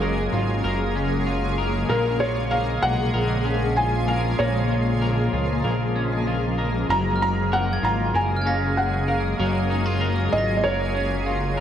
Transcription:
0.00 0.29 F#1 loud
0.00 6.85 C#3 medium
0.00 1.85 F#3 medium
0.00 1.89 F#3 medium
0.00 11.60 G#3 medium
0.00 11.60 A#3 medium
0.00 0.95 C#4 medium
0.00 0.32 F4 medium
0.00 6.85 G#4 medium
0.00 0.64 A#4 medium
0.00 0.61 C#5 medium
0.32 0.62 G#1 medium
0.32 1.26 F4 medium
0.64 1.85 F#1 loud
0.64 1.57 A#4 medium
0.95 3.44 C#4 medium
1.27 2.19 F4 medium
1.58 1.89 A#4 medium
1.89 2.79 A#1 medium
1.89 4.38 A#2 medium
1.89 6.85 F3 medium
1.89 2.51 A#4 medium
1.89 2.21 A#4 medium
2.20 3.76 F4 medium
2.20 2.49 C#5 medium
2.51 3.13 A#4 medium
2.51 2.83 F5 medium
2.82 3.12 B1 medium
2.82 3.79 F#5 loud
3.14 4.35 A#1 medium
3.14 4.08 A#4 medium
3.45 5.95 C#4 medium
3.76 4.70 F4 medium
3.76 4.09 G#5 medium
4.08 4.39 A#4 medium
4.08 4.40 F5 medium
4.39 5.29 A#1 loud
4.39 6.89 A#2 medium
4.39 5.01 A#4 medium
4.39 5.60 C#5 medium
4.70 5.33 F4 soft
5.02 5.64 A#4 medium
5.33 5.62 C#2 medium
5.33 6.27 F4 medium
5.64 6.85 A#1 medium
5.64 6.58 A#4 medium
5.96 8.45 C#4 medium
6.27 7.83 F4 medium
6.58 6.90 A#4 soft
6.89 7.79 F#1 medium
6.89 11.60 C#3 medium
6.89 11.60 F#3 medium
6.89 9.38 F#3 medium
6.89 11.60 G#4 medium
6.89 7.51 A#4 medium
6.89 7.21 A#5 medium
7.16 8.35 F6 soft
7.22 7.53 A#5 medium
7.52 8.14 A#4 medium
7.52 7.84 F#5 medium
7.73 8.40 G#6 medium
7.83 8.12 G#1 medium
7.83 9.42 F4 medium
7.83 8.16 A#5 medium
8.14 9.35 F#1 loud
8.14 9.07 A#4 medium
8.14 8.47 G#5 medium
8.37 10.75 F6 medium
8.42 10.78 G#6 soft
8.46 10.94 C#4 medium
8.46 8.78 F5 medium
8.46 10.37 A#6 soft
8.77 9.09 F#5 medium
9.08 9.39 A#4 medium
9.08 9.97 F5 medium
9.39 10.29 F#1 loud
9.39 11.60 F#3 medium
9.39 10.01 A#4 medium
9.70 9.86 D#4 medium
9.86 10.31 F4 soft
10.01 10.63 A#4 medium
10.32 10.62 G#1 medium
10.32 11.26 F4 medium
10.32 10.55 D#5 medium
10.38 11.60 A#6 medium
10.57 10.64 D#5 medium
10.64 11.60 F#1 loud
10.64 11.57 A#4 medium
10.64 11.53 C#5 medium
10.95 11.60 C#4 soft
11.26 11.60 F4 medium
11.57 11.60 A#4 medium

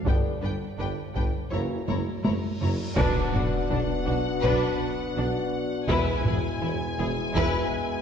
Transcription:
0.06 0.21 G1 medium
0.06 0.15 G1 medium
0.06 0.14 G2 medium
0.06 0.32 D3 medium
0.06 0.32 B3 medium
0.06 0.14 D4 medium
0.06 0.32 D4 medium
0.06 0.32 G4 medium
0.06 0.14 B4 soft
0.06 0.16 G5 medium
0.06 taiko loud
0.06 reverse cymbal medium
0.42 0.57 G1 medium
0.42 0.51 G1 soft
0.42 0.50 G2 soft
0.42 0.50 D4 soft
0.42 0.50 B4 soft
0.42 0.52 G5 soft
0.79 0.94 G1 medium
0.79 0.88 G1 medium
0.79 0.87 G2 soft
0.79 0.87 D4 soft
0.79 0.87 B4 soft
0.79 0.88 G5 medium
1.15 1.30 G1 medium
1.15 1.25 G1 soft
1.15 1.24 G2 medium
1.15 1.23 D4 soft
1.15 1.24 B4 soft
1.15 1.24 G5 soft
1.15 taiko medium
1.51 1.60 F#1 medium
1.51 1.67 F#1 medium
1.51 1.60 F#2 medium
1.51 1.78 E3 medium
1.51 1.78 A#3 medium
1.51 1.78 C#4 soft
1.51 1.60 E4 soft
1.51 1.78 F#4 soft
1.51 1.59 C#5 soft
1.51 1.61 A#5 soft
1.88 2.03 F#1 soft
1.88 1.97 F#1 soft
1.88 1.96 F#2 soft
1.88 1.97 E4 soft
1.88 1.96 C#5 soft
1.88 1.97 A#5 soft
1.88 taiko high medium
2.24 2.39 F#1 soft
2.24 2.33 F#1 soft
2.24 2.32 F#2 medium
2.24 2.32 E4 soft
2.24 2.34 C#5 soft
2.24 2.32 A#5 soft
2.24 taiko high medium
2.61 2.69 F#1 medium
2.61 2.76 F#1 medium
2.61 2.70 F#2 medium
2.61 2.70 E4 soft
2.61 2.70 C#5 soft
2.61 2.70 A#5 soft
2.61 taiko low medium
2.97 3.06 B1 medium
2.97 3.13 B1 medium
2.97 8.02 B2 medium
2.97 3.06 B2 medium
2.97 5.85 B3 medium
2.97 3.31 D4 medium
2.97 5.86 D4 medium
2.97 5.85 F#4 medium
2.97 3.32 B4 medium
2.97 5.85 F#5 medium
2.97 concert bass drum medium
2.97 taiko loud
2.97 crash medium
2.97 impact medium
3.33 3.42 B1 soft
3.33 3.49 B1 soft
3.33 3.42 B2 medium
3.33 3.42 D4 soft
3.33 3.41 F#4 soft
3.33 taiko low-mid soft
3.70 3.78 B1 medium
3.70 3.86 B1 medium
3.70 3.79 B2 medium
3.70 3.78 D4 medium
3.70 3.79 D4 medium
4.06 4.15 B1 soft
4.06 4.23 B1 medium
4.06 4.16 B2 medium
4.06 4.14 D4 soft
4.06 4.14 F#4 medium
4.41 4.51 B1 medium
4.41 4.59 B1 medium
4.41 4.52 B2 medium
4.41 4.78 D4 medium
4.41 4.76 B4 medium
4.41 taiko medium
5.16 5.25 B1 medium
5.16 5.31 B1 soft
5.16 5.25 B2 medium
5.16 5.24 D4 medium
5.16 5.25 D4 medium
5.89 6.03 E1 medium
5.89 5.97 E1 medium
5.89 5.98 E2 medium
5.89 8.02 G#3 medium
5.89 8.02 B3 medium
5.89 8.02 E4 medium
5.89 6.23 E4 medium
5.89 6.23 B4 medium
5.89 8.02 G#5 medium
5.89 taiko medium
6.26 6.40 E1 medium
6.26 6.34 E1 soft
6.26 6.35 E2 medium
6.26 6.34 E4 soft
6.26 6.34 G#4 soft
6.26 taiko low-mid medium
6.61 6.77 E1 medium
6.61 6.70 E1 medium
6.61 6.71 E2 medium
6.61 6.69 E4 medium
6.61 6.70 E4 medium
6.98 7.13 E1 medium
6.98 7.07 E1 medium
6.98 7.07 E2 medium
6.98 7.07 E4 soft
6.98 7.06 G#4 medium
7.34 7.49 E1 medium
7.34 7.44 E1 medium
7.34 7.43 E2 medium
7.34 7.68 E4 medium
7.34 7.69 B4 medium
7.34 taiko medium

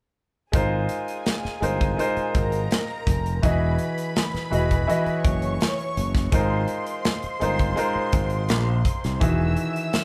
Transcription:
0.52 0.86 G#1 medium
0.52 1.22 G#3 medium
0.52 1.22 D#4 medium
0.52 1.23 F4 medium
0.52 2.31 G#4 medium
0.52 1.23 A#4 medium
0.52 1.23 C5 medium
0.52 2.31 G#5 medium
0.52 kick medium
0.52 closed hi-hat medium
0.89 closed hi-hat medium
1.08 closed hi-hat soft
1.26 snare medium
1.26 closed hi-hat medium
1.45 muted fingered electric bass stroke soft
1.45 snare soft
1.61 1.95 G1 medium
1.61 1.84 G#3 medium
1.61 1.85 D#4 medium
1.61 1.85 F4 medium
1.61 1.85 A#4 medium
1.61 1.86 C5 medium
1.61 closed hi-hat medium
1.81 kick medium
1.81 closed hi-hat soft
1.97 2.89 G#3 medium
1.97 2.90 D#4 medium
1.97 2.90 F4 medium
1.97 2.90 A#4 medium
1.97 2.91 C5 medium
1.97 closed hi-hat medium
2.17 muted fingered electric bass stroke soft
2.17 closed hi-hat soft
2.35 2.67 G#1 medium
2.35 3.41 A#4 medium
2.35 3.41 A#5 medium
2.35 kick medium
2.35 closed hi-hat medium
2.52 closed hi-hat soft
2.71 snare loud
2.71 closed hi-hat medium
3.07 3.40 F1 medium
3.07 kick medium
3.07 closed hi-hat medium
3.26 closed hi-hat medium
3.42 3.76 E1 medium
3.42 4.11 E3 medium
3.42 4.12 E4 medium
3.42 4.12 F#4 medium
3.42 4.13 G#4 medium
3.42 5.21 B4 medium
3.42 4.13 D#5 medium
3.42 5.21 B5 medium
3.42 kick loud
3.42 closed hi-hat medium
3.79 closed hi-hat medium
3.98 closed hi-hat soft
4.16 snare loud
4.16 closed hi-hat medium
4.34 muted fingered electric bass stroke soft
4.34 snare soft
4.34 closed hi-hat soft
4.50 4.84 E1 medium
4.50 4.74 E3 medium
4.50 4.74 E4 medium
4.50 4.74 F#4 medium
4.50 4.75 G#4 medium
4.50 4.75 D#5 medium
4.50 closed hi-hat medium
4.71 kick medium
4.71 closed hi-hat soft
4.87 5.79 E3 medium
4.87 5.79 E4 medium
4.87 5.80 F#4 medium
4.87 5.80 G#4 medium
4.87 5.80 D#5 medium
4.87 closed hi-hat medium
5.06 muted fingered electric bass stroke soft
5.06 closed hi-hat soft
5.24 5.57 F#1 medium
5.24 6.30 C#5 medium
5.24 6.30 C#6 medium
5.24 kick medium
5.24 closed hi-hat medium
5.42 closed hi-hat soft
5.61 snare loud
5.61 closed hi-hat medium
5.79 closed hi-hat soft
5.97 6.29 F#1 medium
5.97 closed hi-hat medium
6.15 kick medium
6.15 snare soft
6.15 closed hi-hat medium
6.32 6.65 G#1 loud
6.32 7.01 G#3 medium
6.32 7.01 D#4 medium
6.32 7.01 F4 medium
6.32 7.02 A#4 medium
6.32 9.18 C5 medium
6.32 7.02 C5 medium
6.32 9.18 C6 medium
6.32 kick loud
6.32 closed hi-hat medium
6.68 closed hi-hat medium
6.87 closed hi-hat soft
7.05 snare medium
7.05 closed hi-hat medium
7.23 muted fingered electric bass stroke soft
7.23 closed hi-hat soft
7.40 7.74 G1 medium
7.40 7.63 G#3 medium
7.40 7.64 D#4 medium
7.40 7.64 F4 medium
7.40 7.65 A#4 medium
7.40 7.65 C5 medium
7.40 closed hi-hat medium
7.59 kick medium
7.59 closed hi-hat soft
7.76 8.68 G#3 medium
7.76 8.68 D#4 medium
7.76 8.69 F4 medium
7.76 8.69 A#4 medium
7.76 8.69 C5 medium
7.76 closed hi-hat medium
7.95 muted fingered electric bass stroke soft
8.13 8.49 G#1 medium
8.13 kick medium
8.13 closed hi-hat medium
8.30 closed hi-hat soft
8.49 8.82 A#1 medium
8.49 snare loud
8.49 closed hi-hat medium
8.85 kick medium
8.85 closed hi-hat medium
9.04 9.21 C2 medium
9.04 snare soft
9.04 closed hi-hat medium
9.20 9.54 E1 medium
9.20 9.90 D#3 medium
9.20 9.90 E3 medium
9.20 9.90 F#4 medium
9.20 9.91 G#4 medium
9.20 10.04 E5 medium
9.20 9.91 E5 medium
9.20 10.04 E6 medium
9.20 kick loud
9.20 closed hi-hat medium
9.57 closed hi-hat medium
9.76 closed hi-hat soft
9.93 snare medium
9.93 closed hi-hat medium

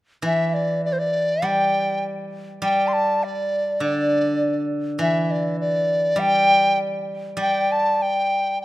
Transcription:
0.22 2.04 E3 soft
0.22 0.49 E5 medium
0.49 0.55 E5 soft
0.54 0.84 D5 medium
0.85 0.94 D5 medium
0.93 1.00 C5 medium
0.99 1.47 D5 medium
1.42 2.61 G3 soft
1.42 2.05 G5 medium
2.62 4.41 G3 medium
2.62 2.89 G5 medium
2.88 2.95 C6 medium
2.94 3.25 A5 medium
3.24 3.83 D5 medium
3.80 5.58 D3 soft
3.80 4.67 D5 medium
4.99 6.77 E3 medium
4.99 5.24 E5 medium
5.24 5.32 E5 soft
5.31 5.59 D5 medium
5.60 6.21 D5 medium
6.16 7.36 G3 soft
6.16 6.79 G5 loud
7.37 8.65 G3 medium
7.41 7.73 G5 medium
7.72 8.03 A5 medium
8.02 8.61 G5 medium
8.62 8.65 G5 medium

